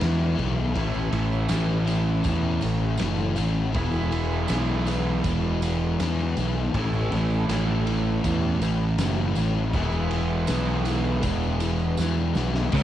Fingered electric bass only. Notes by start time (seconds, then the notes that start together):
0.02 E2
0.39 B1
0.76 A1
1.13 A1
1.51 A1
2.26 E2
2.63 A1
3.01 F#1
3.38 A1
3.75 E1
4.50 B1
5.25 E1
6.00 E2
6.37 B1
6.74 A1
7.13 A1
7.49 A1
8.25 E2
8.60 A1
8.98 F#1
9.37 A1
9.73 E1
10.50 B1
11.24 E1
11.99 E2
12.36 B1
12.73 C#2